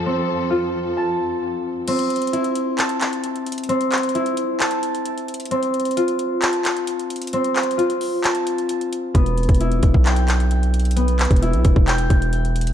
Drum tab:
CC |------------------------------------------------------------------------------------------------|x-----------------------------------------------------------------------------------------------|------------------------------------------------------------------------------------------------|------------------------------------------------------------------------------------------------|
HH |------------------------------------------------------------------------------------------------|x-----x-----x--x--x--x--x-----x-----x-----------x-----x-----x-----x-----x-----x-----x--x--x--x--|x-----x-----x--x--x--x--x-----x-----x-----------x-----x-----x-----x-----x-----x-----x--x--x--x--|x-----x-----x--x--x--x--x-----x-----x-----------x-----x-----x-----x-----x-----x-----x--x--x--x--|
CP |------------------------------------------------------------------------------------------------|------------------------------------------------x-----------x-----------------------------------|------------x-----------------------------------x-----------------------------------------------|------------------------------------------------x-----------x-----------------------------------|
BD |------------------------------------------------------------------------------------------------|------------------------------------------------------------------------------------------------|------------------------------------------------------------------------------------------------|------------------------------------------------------------------------------------------------|

CC |------------------------------------------------------------------------------------------------|------------------------------------------------------------------------------------------------|------------------------------------------------------------------------------------------------|
HH |x-----x-----x---x---x---x-----x-----o-----------x-----x-----x-----x-----x-----x-----x-----------|x-----x-----x--x--x--x--x-----x-----x-----------x-----x-----x-----x-----x-----x-----x--x--x--x--|x-----x-----x--x--x--x--x-----x-----x-----------x-----x-----x-----x-----x-----x-----x--x--x-----|
CP |------------x-----------------------------------x-----------------------------------------------|------------------------------------------------x-----------x-----------------------------------|------------x-----------------------------------x-----------------------------------------------|
BD |------------------------------------------------------------------------------------------------|o-----------------o-----------------o-----o-----------------------------------------------------|------------------o-----------------o-----o-----------------o-----------------------------------|